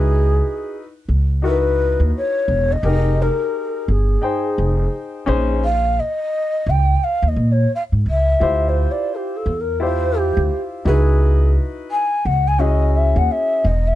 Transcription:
Already playing: upright bass C#2, grand piano D#4 E4 F#4 B4, shakuhachi G#4
1.09 upright bass C#2
1.42 grand piano D#4 E4 F#4 A#4, shakuhachi B4
1.51 grand piano B4
2.00 upright bass D#2
2.17 shakuhachi C#5
2.48 upright bass E1
2.72 shakuhachi D#5
2.83 upright bass F1, grand piano D#4 G4 G#4 A#4
3.21 shakuhachi A#4
3.88 upright bass G1, shakuhachi G#4
4.22 grand piano D#4 G#4 C5 G5
4.58 upright bass F1
5.26 upright bass A#1, grand piano C#4 D#4 G#4 C5
5.64 shakuhachi F5
5.99 shakuhachi D#5
6.66 upright bass C#2, shakuhachi G5
7.03 shakuhachi F5
7.22 upright bass D#2
7.28 shakuhachi D#5
7.36 upright bass A#2
7.51 shakuhachi C#5
7.75 shakuhachi F5
7.92 upright bass G#2
8.06 upright bass C#2, shakuhachi E5
8.40 upright bass D2, grand piano E4 F4 G4 C5
8.68 shakuhachi C5
8.91 shakuhachi D5
9.15 shakuhachi G4
9.36 shakuhachi A4
9.46 upright bass E2
9.60 shakuhachi A#4
9.80 grand piano E4 F4 G4 C5, shakuhachi C5
10.18 shakuhachi G4
10.37 upright bass D2
10.85 upright bass C#2, grand piano D#4 E4 F#4 B4, shakuhachi G#4
11.91 shakuhachi G#5
12.25 upright bass C#2, shakuhachi F#5
12.47 shakuhachi G#5
12.59 grand piano C#4 E4 F#4 G#4, shakuhachi D#5
12.96 shakuhachi E5
13.16 upright bass D#2, shakuhachi F#5
13.31 shakuhachi E5
13.64 upright bass E1, shakuhachi D#5
13.87 shakuhachi E5

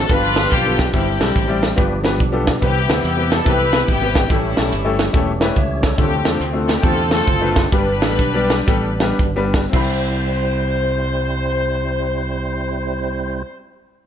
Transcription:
0.09 fingered electric bass G1, grand piano G2 B3 D4 F4 G4 B4, tonewheel organ D3 F3 G3 B3 F4, string section D4 F4 B4, kick, closed hi-hat
0.36 grand piano B3 D4 F4 G4 B4, snare, closed hi-hat
0.52 fingered electric bass B1, string section B3 D4 G4, kick, closed hi-hat
0.64 grand piano B3 D4 F4 G4 A4
0.79 kick, snare, closed hi-hat
0.93 fingered electric bass G1, grand piano G2 G3 C4 E4 G4 C5, tonewheel organ G3 C4 E4, string section C4 E4 G4, kick, closed hi-hat
1.20 fingered electric bass B1, grand piano G3 C4 E4 G4 A4, snare, closed hi-hat
1.36 fingered electric bass A1, kick, closed hi-hat
1.48 grand piano G3 C4 E4 G4 D5
1.63 snare, closed hi-hat
1.76 fingered electric bass G1, grand piano G2 B3 D4 F4 G4 B4, tonewheel organ F3 G3 B3 D4 G4, kick, closed hi-hat
2.04 grand piano B3 D4 F4 G4 B4, snare, closed hi-hat
2.20 fingered electric bass B1, kick, closed hi-hat
2.32 grand piano B3 D4 F4 G4 A4
2.47 kick, snare, closed hi-hat
2.61 fingered electric bass C2, grand piano C3 B3 C4 E4 G4 B4, tonewheel organ C3 E3 G3 B3 G4, string section B3 E4 G4, kick, closed hi-hat
2.88 fingered electric bass D2, grand piano B3 C4 E4 G4 C5, snare, closed hi-hat
3.04 fingered electric bass E2, string section G4, closed hi-hat
3.16 grand piano B3 C4 E4 G4 B4
3.32 string section A4, snare, closed hi-hat
3.44 fingered electric bass C2, grand piano B3 C4 E4 G4 A4, string section E4 G4 B4, kick, closed hi-hat
3.73 grand piano B3 C4 E4 G4 B4, snare, closed hi-hat
3.88 fingered electric bass G#1, string section B3 E4 G4, kick, closed hi-hat
4.01 grand piano B3 C4 E4 G4 B4
4.15 kick, snare, closed hi-hat
4.30 fingered electric bass A1, grand piano A2 A3 C#4 E4 G4 A4, tonewheel organ E3 G3 A3 B3 G4, string section G3 C#4 E4, kick, closed hi-hat
4.35 tonewheel organ C#4
4.57 fingered electric bass B1, grand piano A3 C#4 E4 G4 A4, snare, closed hi-hat
4.72 fingered electric bass G1, closed hi-hat
4.85 grand piano A3 C#4 E4 G4 A4
4.99 snare, closed hi-hat
5.13 fingered electric bass E1, grand piano A3 C#4 E4 G4 A4, kick, closed hi-hat
5.40 grand piano A3 C#4 E4 G4 B4, snare, closed hi-hat
5.56 fingered electric bass C#2, tonewheel organ C#5, grand piano C#5 E5, kick, closed hi-hat
5.83 tonewheel organ A4, grand piano A4 C#5, kick, snare, closed hi-hat
5.98 fingered electric bass D2, tonewheel organ C3 D3 A3 C4 F4, grand piano D3 A3 C4 D4 F4 A4, string section C4 G4, kick, closed hi-hat
6.25 fingered electric bass E2, grand piano A3 C4 D4 F4 A4, snare, closed hi-hat
6.40 fingered electric bass D2, closed hi-hat
6.53 grand piano A3 C4 D4 F4 A4
6.68 string section A4, snare, closed hi-hat
6.76 string section G4
6.82 fingered electric bass E2, grand piano A3 C4 D4 F4 G4, string section C4 F4 A4, kick, closed hi-hat
7.10 grand piano A3 C4 D4 F4 A4, string section C4 F4 A4, snare, closed hi-hat
7.27 fingered electric bass F#1, kick, closed hi-hat
7.41 grand piano A3 C4 D4 F4 B4
7.56 kick, snare, closed hi-hat
7.72 fingered electric bass G1, grand piano G2 G3 B3 D4 G4 B4, tonewheel organ G3 B3 D4, string section D4 G4 B4, kick, closed hi-hat
8.02 fingered electric bass A1, grand piano G3 B3 D4 G4 A4, snare, closed hi-hat
8.19 fingered electric bass B1, kick, closed hi-hat
8.34 grand piano G3 B3 D4 G4 D5
8.50 snare, closed hi-hat
8.67 fingered electric bass A1, grand piano G3 B3 D4 G4 A4, kick, closed hi-hat
9.00 grand piano G3 B3 D4 G4 B4, snare, closed hi-hat
9.19 fingered electric bass G1, kick, closed hi-hat
9.36 grand piano G3 B3 D4 G4 B4
9.54 kick, snare, closed hi-hat
9.70 grand piano C2 C4 E4, fingered electric bass C2, tonewheel organ C4 E4, string section C5, kick, crash
9.74 tonewheel organ G3 C5, grand piano G4 B5

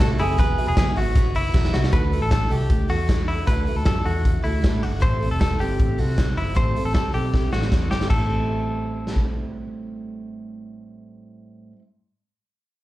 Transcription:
Already playing: fingered electric bass C2, clean electric guitar F#4
0.00 steel-string acoustic guitar A2 G3 A3 C4 E4 A4
0.19 fingered electric bass F#1, steel-string acoustic guitar G3 C4 E4 A4, clean electric guitar E4 G#4, open hi-hat
0.38 fingered electric bass E1, steel-string acoustic guitar E3 F#3 B3 F#4 G#4 E5, clean electric guitar B4, kick, hi-hat pedal, ride
0.58 steel-string acoustic guitar B3 F#4 G#4 E5, open hi-hat
0.67 fingered electric bass E1, clean electric guitar G#4
0.77 fingered electric bass F#1, steel-string acoustic guitar E3 F#3 B3 F#4 G#4 E5, clean electric guitar G#4, kick, snare, hi-hat pedal, ride
0.95 fingered electric bass G#1, steel-string acoustic guitar B3 F#4 G#4 E5, clean electric guitar F#4, open hi-hat
1.15 steel-string acoustic guitar B3 F#4 G#4 E5, kick, hi-hat pedal, ride
1.34 fingered electric bass F#1, clean electric guitar E4, open hi-hat
1.54 fingered electric bass E1, steel-string acoustic guitar E3 F#3 B3 F#4 G#4 E5, kick, snare
1.65 snare
1.73 fingered electric bass C2, steel-string acoustic guitar B3 F#4 G#4 E5, clean electric guitar F#4, snare
1.84 snare
1.92 fingered electric bass D2, steel-string acoustic guitar D3 D4 E4 F#4 A4, clean electric guitar B4, kick, closed hi-hat
2.12 steel-string acoustic guitar E4 F#4 A4, open hi-hat
2.21 fingered electric bass A1, clean electric guitar A4
2.30 steel-string acoustic guitar D4 E4 F#4 A4, clean electric guitar A4, kick, snare, closed hi-hat
2.49 fingered electric bass C2, steel-string acoustic guitar E4 F#4 A4, clean electric guitar G4, open hi-hat
2.70 fingered electric bass D2, kick, closed hi-hat
2.88 fingered electric bass E2, steel-string acoustic guitar E4 F#4 A4, clean electric guitar F#4, open hi-hat
3.08 steel-string acoustic guitar D4 E4 F#4 A4, kick, snare, closed hi-hat
3.28 clean electric guitar E4, open hi-hat
3.47 fingered electric bass D2, steel-string acoustic guitar D3 D4 E4 F#4 A4, clean electric guitar B4, kick, closed hi-hat
3.66 steel-string acoustic guitar E4 F#4 A4, open hi-hat
3.76 fingered electric bass D2, clean electric guitar A4
3.85 fingered electric bass F#2, steel-string acoustic guitar D4 E4 F#4 A4, clean electric guitar A4, kick, snare, closed hi-hat
4.04 fingered electric bass E2, steel-string acoustic guitar E4 F#4 A4, clean electric guitar F#4, open hi-hat
4.25 kick, closed hi-hat
4.42 fingered electric bass D2, clean electric guitar E4, steel-string acoustic guitar E4 F#4 A4, open hi-hat
4.61 fingered electric bass A2, steel-string acoustic guitar D4 E4 F#4 A4, kick, snare, closed hi-hat
4.83 fingered electric bass G1, clean electric guitar F#4, open hi-hat
5.00 fingered electric bass A1, steel-string acoustic guitar A2 G3 A3 C4 E4 A4, clean electric guitar C5, kick, closed hi-hat
5.19 steel-string acoustic guitar G3 C4 E4 A4, open hi-hat
5.31 fingered electric bass E1, clean electric guitar A4
5.39 steel-string acoustic guitar G3 C4 E4 A4, clean electric guitar A4, kick, snare, closed hi-hat
5.59 fingered electric bass G1, steel-string acoustic guitar G3 C4 E4 A4, clean electric guitar G4, open hi-hat
5.80 fingered electric bass A1, kick, closed hi-hat
5.98 fingered electric bass C2, steel-string acoustic guitar G3 C4 E4 A4, clean electric guitar F#4, open hi-hat
6.17 steel-string acoustic guitar G3 C4 E4 A4, kick, snare, closed hi-hat
6.37 fingered electric bass G1, clean electric guitar E4, open hi-hat
6.54 fingered electric bass A1, steel-string acoustic guitar A2 G3 A3 C4 E4 A4, clean electric guitar C5, kick, closed hi-hat
6.74 steel-string acoustic guitar G3 C4 E4 A4, open hi-hat
6.85 fingered electric bass A1, clean electric guitar A4
6.93 fingered electric bass C2, steel-string acoustic guitar G3 C4 E4 A4, clean electric guitar A4, kick, snare, closed hi-hat
7.12 fingered electric bass B1, steel-string acoustic guitar G3 C4 E4 A4, clean electric guitar G4, open hi-hat
7.34 kick, snare
7.51 fingered electric bass A1, steel-string acoustic guitar G3 C4 E4 A4, clean electric guitar F#4, snare
7.62 snare
7.70 fingered electric bass E2, steel-string acoustic guitar G3 C4 E4 A4, kick, snare
7.91 fingered electric bass G1, clean electric guitar G4, snare
8.01 steel-string acoustic guitar A2, snare
8.08 fingered electric bass A1, steel-string acoustic guitar G3 A3, clean electric guitar A4, kick, crash
8.13 steel-string acoustic guitar C4 E4
8.19 steel-string acoustic guitar A4
9.07 snare
9.16 kick

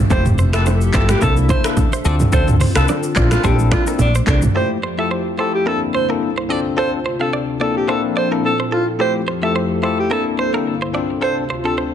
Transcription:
0.10 fretless electric bass F1, analog synth pad F3 G4 A4 E5, tine electric piano A3 E4 F4 G4, clean electric guitar A4, alto saxophone C5, kick, low conga, shaker
0.26 mid tom, shaker
0.38 clean electric guitar C5, shaker
0.53 tine electric piano A3 E4 F4 G4, alto saxophone A4, clean electric guitar E5, finger snap, cross-stick, shaker
0.66 clean electric guitar C5, high bongo, shaker
0.81 shaker
0.94 fretless electric bass G1, tine electric piano A3 E4 F4 G4, alto saxophone A4, clean electric guitar C5, kick, clap, shaker
1.09 alto saxophone G4, finger snap, cross-stick, low bongo, shaker
1.21 fretless electric bass C2, analog synth pad C3 A#3 D4, tine electric piano A#3 D4 E4 A4, alto saxophone A4, clean electric guitar A#4, kick, low conga, shaker
1.37 low bongo, shaker
1.49 clean electric guitar C5, alto saxophone C5, kick, low bongo, shaker
1.64 tine electric piano A#3 D4 E4 A4, clean electric guitar A#4, finger snap, cross-stick, shaker
1.77 kick, high bongo, low conga, shaker
1.93 clean electric guitar C5, shaker
2.05 fretless electric bass D2, analog synth pad D3 C4 F4, tine electric piano C4 D4 F4 A4, clean electric guitar D5, shaker
2.20 mid tom, low bongo, shaker
2.32 fretless electric bass D2, tine electric piano C4 D4 F4 A4, clean electric guitar A4, alto saxophone C5, kick, low conga, shaker
2.48 mid tom, shaker
2.60 clean electric guitar C5, mid tom, open hi-hat, shaker
2.75 fretless electric bass C2, tine electric piano C4 D4 F4 A4, alto saxophone A4, clean electric guitar F5, finger snap, cross-stick, shaker
2.88 clean electric guitar D5, high bongo, shaker
3.03 shaker
3.16 fretless electric bass A#1, analog synth pad A3 A#3 D4, tine electric piano C4 D4 E4 A4, alto saxophone F4, clean electric guitar D5, kick, clap, shaker
3.31 alto saxophone F4, finger snap, cross-stick, low bongo, shaker
3.44 fretless electric bass A#1, tine electric piano C4 D4 E4 A4, alto saxophone G4, clean electric guitar C5, kick, low conga, shaker
3.59 low bongo, shaker
3.71 alto saxophone F4, clean electric guitar D5, finger snap, kick, cross-stick, low bongo, shaker
3.87 tine electric piano C4 D4 E4 A4, clean electric guitar A#4, shaker
3.99 fretless electric bass A#1, alto saxophone D4, high bongo, low conga, shaker
4.15 clean electric guitar C5, shaker
4.27 fretless electric bass C2, alto saxophone D4, clean electric guitar A4, kick, clap, shaker
4.42 mid tom, low bongo, shaker
4.55 analog synth pad F2 F3 A3 G4, tine electric piano A3 E4 F4 G4, clean electric guitar A4, alto saxophone C5
4.83 clean electric guitar C5
4.98 tine electric piano A3 E4 F4 G4, alto saxophone A4, clean electric guitar E5
5.11 clean electric guitar C5
5.38 tine electric piano A3 E4 F4 G4, alto saxophone A4, clean electric guitar C5
5.55 alto saxophone G4
5.66 analog synth pad C2 G2 D3 A#3 E4 A4, tine electric piano A#3 C4 D4 E4 A4, alto saxophone A4, clean electric guitar A#4
5.95 clean electric guitar C5, alto saxophone C5
6.09 tine electric piano A#3 C4 D4 E4 A4, clean electric guitar A#4
6.38 clean electric guitar C5
6.49 analog synth pad D2 C3 F4, tine electric piano C4 D4 F4 A4, clean electric guitar D5
6.77 tine electric piano C4 D4 F4 A4, clean electric guitar A4, alto saxophone C5
7.06 clean electric guitar C5
7.20 tine electric piano C4 D4 F4 A4, alto saxophone A4, clean electric guitar F5
7.33 clean electric guitar D5
7.60 analog synth pad A#2 F3 C4 D4 E4 A4, tine electric piano A#3 C4 D4 E4 A4, alto saxophone A4, clean electric guitar D5
7.77 alto saxophone G4
7.88 tine electric piano A#3 C4 D4 E4 A4, alto saxophone A4, clean electric guitar C5
8.17 alto saxophone C5, clean electric guitar D5
8.31 tine electric piano A#3 C4 D4 E4 A4, clean electric guitar A#4
8.45 alto saxophone A4
8.60 clean electric guitar C5
8.72 alto saxophone F4, clean electric guitar A4
8.99 analog synth pad F2 F3 G4 A4, tine electric piano A3 E4 F4 G4, clean electric guitar A4, alto saxophone C5
9.28 clean electric guitar C5
9.42 tine electric piano A3 E4 F4 G4, alto saxophone A4, clean electric guitar E5
9.56 clean electric guitar C5
9.82 tine electric piano A3 E4 F4 G4, alto saxophone A4, clean electric guitar C5
9.99 alto saxophone G4
10.10 analog synth pad C2 G2 D3 A#3 E4, tine electric piano A#3 C4 D4 E4 A4, alto saxophone A4, clean electric guitar A#4
10.39 clean electric guitar C5, alto saxophone C5
10.53 tine electric piano A#3 C4 D4 E4 A4, clean electric guitar A#4
10.82 clean electric guitar C5
10.94 analog synth pad D2 C3 F4, tine electric piano C4 D4 F4 A4, clean electric guitar D5
11.21 tine electric piano C4 D4 F4 A4, clean electric guitar A4, alto saxophone C5
11.50 clean electric guitar C5
11.64 tine electric piano C4 D4 F4 A4, clean electric guitar A4, alto saxophone A4
11.78 clean electric guitar C5

